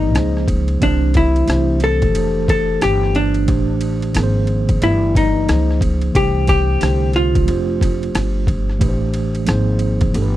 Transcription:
Already playing: upright bass G1, tine electric piano E3 A3 G4 B4 D5, hollow-body jazz guitar D#4
0.13 upright bass C#2, tine electric piano F3 A#3 D#4 G#4 C5, cross-stick, hi-hat pedal, ride
0.37 cross-stick
0.48 kick, ride
0.68 ride
0.80 upright bass C2, tine electric piano E3 A3 D4 G4 C5, hollow-body jazz guitar D4, kick, ride
1.14 hollow-body jazz guitar E4, kick, ride
1.36 ride
1.46 upright bass C2, tine electric piano E3 A3 D4 G4 C5, cross-stick, hi-hat pedal, ride
1.80 hollow-body jazz guitar A4, ride
2.02 kick, ride
2.11 tine electric piano E3 A3 D4
2.15 upright bass F1, tine electric piano G4 C5, ride
2.48 hollow-body jazz guitar A4, kick, ride
2.81 upright bass G1, hollow-body jazz guitar G4, cross-stick, hi-hat pedal, ride
3.03 cross-stick
3.15 hollow-body jazz guitar D4, ride
3.34 ride
3.46 upright bass A1, tine electric piano E3 A3 D4 G4 C5, kick, ride
3.81 ride
4.02 ride
4.13 upright bass G#1, tine electric piano D#3 F3 A#3 G#4 A#4, cross-stick, hi-hat pedal, ride
4.23 tine electric piano C5
4.47 ride
4.69 kick, ride
4.80 upright bass G1, tine electric piano E3 A3 G4 B4 D5, hollow-body jazz guitar E4, ride
5.15 hollow-body jazz guitar D#4, kick, ride
5.46 upright bass C#2, tine electric piano E3 A#3 D#4 G#4 C5, cross-stick, hi-hat pedal, ride
5.52 tine electric piano F3
5.71 cross-stick
5.81 kick, ride
6.01 ride
6.13 upright bass C2, tine electric piano D#3 A3 D4 G4 C5, hollow-body jazz guitar G4, kick, ride
6.19 tine electric piano E3
6.47 hollow-body jazz guitar G4, kick, ride
6.79 upright bass C2, tine electric piano D3 A3 D4 G4 C5, cross-stick, hi-hat pedal, ride
6.86 tine electric piano D3
7.13 hollow-body jazz guitar F4, cross-stick, ride
7.35 kick, ride
7.43 tine electric piano F3 A3 D4
7.48 upright bass F1, tine electric piano G4 C5, ride
7.81 kick, cross-stick, ride
8.03 ride
8.15 upright bass G1, cross-stick, hi-hat pedal, ride
8.47 kick, ride
8.70 cross-stick
8.79 upright bass A1, tine electric piano E3 A3 D4 G4 B4, kick, ride
8.88 tine electric piano C5
9.14 ride
9.35 ride
9.45 upright bass G#1, tine electric piano F3 A#3 D#4 G#4, cross-stick, hi-hat pedal, ride
9.49 tine electric piano C5
9.79 ride
10.01 kick, ride
10.12 upright bass G1, tine electric piano E3 A3 D4 G4 A4, ride
10.22 tine electric piano B4

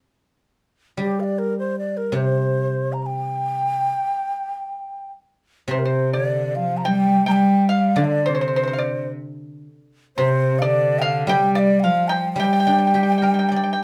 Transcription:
0.97 guzheng G3, xiao G4
1.20 xiao D5 F5
1.39 xiao A#4
1.59 xiao C5
1.79 xiao D5
1.97 xiao A#4
2.12 guzheng C3, xiao C5
2.93 xiao A#5
3.03 xiao G5 A#5
5.68 guzheng C3, cello C3, pipa C5
5.73 xiao C5
5.79 xiao A#4
5.85 cello C3, xiao C5, pipa C5
6.13 cello D3, xiao D5, pipa D5
6.55 cello F3, xiao F5
6.77 xiao A#5
6.85 cello G3, pipa G5, xiao G5
7.26 cello G3, pipa G5, xiao A#5
7.32 xiao G5
7.69 pipa F5, xiao F5
7.96 guzheng D3, cello D3, pipa D5
8.01 xiao D5 F5
8.26 cello C3, pipa C5, xiao C5
8.35 pipa C5
8.41 pipa C5
8.48 pipa C5
8.56 pipa C5
8.63 pipa C5
8.68 pipa C5
8.73 pipa F5
8.79 pipa D5
10.17 guzheng C3, cello C3, xiao C5, pipa C5
10.59 cello D3, pipa D5, xiao F5
10.63 xiao D5
10.99 pipa F5, xiao G5
11.04 xiao F5
11.27 guzheng G3, cello G3, xiao G5, pipa G5
11.55 pipa D5, xiao D5 F5
11.80 cello F3, xiao F5 G5, pipa F5
12.08 pipa G5, xiao A#5
12.13 xiao G5
12.33 guzheng G3, xiao G5
12.38 cello G3, pipa G5
12.44 pipa G5
12.53 pipa G5
12.60 pipa G5
12.67 guzheng D4, pipa G5
12.73 pipa G5
12.78 pipa G5
12.87 pipa G5
12.94 guzheng G4, pipa G5
13.03 pipa G5
13.12 pipa G5
13.18 pipa G5
13.22 guzheng A#4, pipa G5
13.34 pipa G5
13.39 pipa G5
13.49 guzheng D5, pipa G5
13.56 pipa G5
13.64 pipa G5
13.73 pipa G5

